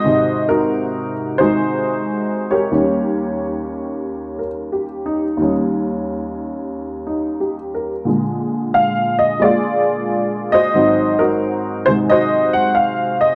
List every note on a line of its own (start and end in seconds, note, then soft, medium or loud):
0.00 2.71 G#2 soft
0.00 0.49 F#4 medium
0.00 1.12 C5 medium
0.00 0.45 D#5 medium
0.04 2.72 C3 medium
0.04 1.36 D#3 soft
0.49 1.39 D#4 medium
0.49 1.39 F#4 medium
0.49 1.40 A#4 medium
1.38 2.70 D#3 soft
1.38 2.72 G#3 medium
1.38 2.68 D#4 medium
1.38 2.69 F#4 medium
1.38 2.52 C5 medium
2.51 4.47 G4 medium
2.51 4.37 A#4 medium
2.51 4.46 C#5 medium
2.71 5.35 D#2 medium
2.71 5.37 D#3 soft
2.71 5.39 G3 soft
2.71 5.39 C#4 medium
4.39 4.85 A#4 soft
4.72 5.24 G4 soft
5.06 5.52 D#4 medium
5.37 8.05 D#2 medium
5.37 8.06 D#3 soft
5.37 8.07 G3 soft
5.42 8.08 C#4 medium
7.07 7.53 D#4 soft
7.40 7.92 G4 soft
7.74 8.20 A#4 medium
8.05 10.73 A#2 medium
8.05 10.74 D3 soft
8.05 9.38 G#3 soft
8.74 9.15 F5 medium
9.19 9.41 D#5 medium
9.40 10.74 G#3 soft
9.40 10.74 A#3 soft
9.40 10.72 G#4 medium
9.40 10.56 D5 medium
9.44 10.72 F4 medium
10.52 11.19 F#4 medium
10.52 11.83 C5 medium
10.52 11.21 D#5 loud
10.74 13.35 G#2 medium
10.74 11.84 D#3 medium
10.74 13.35 F#3 medium
10.74 13.35 C4 medium
11.19 12.50 D#4 medium
11.19 12.10 F#4 medium
11.19 11.88 A#4 medium
11.85 13.35 C3 soft
11.85 13.35 D#3 soft
11.85 13.35 G#3 soft
11.85 11.91 C5 medium
12.10 13.35 F#4 medium
12.10 13.35 C5 medium
12.10 12.50 D#5 medium
12.53 12.74 F#5 medium
12.75 13.16 F5 medium
13.21 13.35 D#5 medium